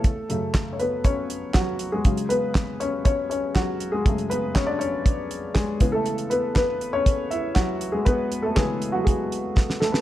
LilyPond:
<<
  \new Staff \with { instrumentName = "Upright piano" } { \time 4/4 \key fis \minor \tempo 4 = 120 a'4~ a'16. cis''32 b'8 cis''4 fis'8. gis'16~ | gis'8 b'4 cis''8 cis''8 cis''8 fis'8. gis'16~ | gis'8 b'8 cis''16 d''16 cis''4. gis'8. a'16~ | a'8 b'8 b'8. cis''8. e''8 fis'8. gis'16 |
b'8. a'16 gis'8. fis'16 gis'4. a'16 b'16 | }
  \new Staff \with { instrumentName = "Upright piano" } { \time 4/4 \key fis \minor << { a4. b8 cis'4 fis8. gis16~ | gis8 b4 cis'8 cis'8 cis'8 fis8. gis16~ | gis8 b8 cis'16 d'16 cis'4. gis8. a16~ | a8 b8 b8. cis'8. e'8 fis8. gis16 |
b8. a16 gis8. fis16 gis4. a16 b16 | } \\ { r8 <fis, cis a>8 r2. | <cis fis gis>8 r2. r8 | <fis, cis a>2.~ <fis, cis a>8 <cis e b>8 | r1 |
r4 <cis e b>8 r2 r8 | } >> }
  \new DrumStaff \with { instrumentName = "Drums" } \drummode { \time 4/4 <hh bd>8 hh8 <hc hh bd sn>8 hh8 <hh bd>8 hh8 <hc hh bd sn>8 hh8 | <hh bd>16 hh16 hh8 <hc hh bd sn>8 hh8 <hh bd>8 hh8 <hc hh bd sn>8 hh8 | <hh bd>16 hh16 hh8 <hc hh bd sn>8 hh8 <hh bd>8 hh8 <hc hh bd sn>8 <hh bd>8 | hh16 hh16 hh8 <hc hh bd sn>8 hh8 <hh bd>8 hh8 <hc hh bd sn>8 hh8 |
<hh bd>8 hh8 <hc hh bd sn>8 hh8 <hh bd>8 hh8 <bd sn>16 sn16 sn16 sn16 | }
>>